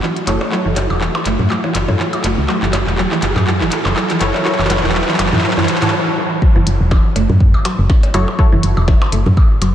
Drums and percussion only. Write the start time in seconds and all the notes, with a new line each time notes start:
0.03 clap
0.16 closed hi-hat
0.27 clap, closed hi-hat, percussion blips
0.41 percussion blips
0.52 clap
0.76 clap, closed hi-hat, percussion blips
0.90 percussion blips
1.01 clap
1.15 percussion blips
1.26 clap, closed hi-hat
1.39 mid tom
1.50 clap, percussion blips
1.64 percussion blips
1.75 clap, closed hi-hat, percussion blips
1.88 mid tom, percussion blips
1.99 clap
2.13 closed hi-hat, percussion blips
2.24 clap, closed hi-hat
2.49 clap, percussion blips
2.62 clap
2.73 clap, closed hi-hat, percussion blips
2.87 clap
2.98 clap
3.11 clap, percussion blips
3.22 clap, closed hi-hat
3.36 clap, mid tom, percussion blips
3.47 clap
3.61 clap
3.72 clap, closed hi-hat
3.85 clap, percussion blips
3.96 clap, percussion blips
4.10 clap, closed hi-hat
4.21 clap, closed hi-hat
4.34 clap, percussion blips
4.45 clap, percussion blips
4.52 clap
4.59 clap, percussion blips
4.64 clap
4.70 clap, closed hi-hat, percussion blips
4.77 clap
4.84 clap
4.89 clap
4.95 clap
5.01 clap
5.08 clap
5.14 clap
5.19 clap, closed hi-hat, percussion blips
5.26 clap
5.33 clap, mid tom
5.38 clap
5.44 clap
5.51 clap
5.57 clap, percussion blips
5.63 clap
5.68 clap, closed hi-hat
5.75 clap
5.82 clap, closed hi-hat, mid tom, percussion blips
5.88 clap
6.42 kick
6.67 closed hi-hat
6.91 kick, snare, percussion blips
7.16 closed hi-hat, percussion blips
7.30 mid tom
7.40 kick
7.54 percussion blips
7.65 closed hi-hat, percussion blips
7.90 kick, snare
8.03 closed hi-hat, percussion blips
8.14 closed hi-hat, percussion blips
8.28 percussion blips
8.39 kick
8.63 closed hi-hat
8.77 percussion blips
8.88 kick, snare, percussion blips
9.02 percussion blips
9.12 closed hi-hat
9.26 mid tom
9.37 kick, percussion blips
9.62 closed hi-hat, percussion blips